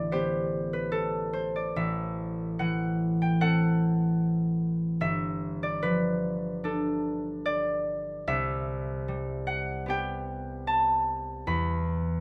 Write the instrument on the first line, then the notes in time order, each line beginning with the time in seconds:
harp
Already playing: A1 D3 B3 A4 D5 E5 F5
0.12 B3 G4 C5
0.73 B4
0.92 A4
1.33 C5
1.56 D5
1.76 A1 E5
2.59 E3 F#5
3.22 G5
3.41 C4 A4 F#5
5.01 G1 E5
5.63 D5
5.83 F3 B4
6.64 D4 A4
7.46 D5
8.28 C2 E5
9.08 G3
9.47 F#5
9.86 B3 G4 G5
10.67 A5
11.47 E2 B5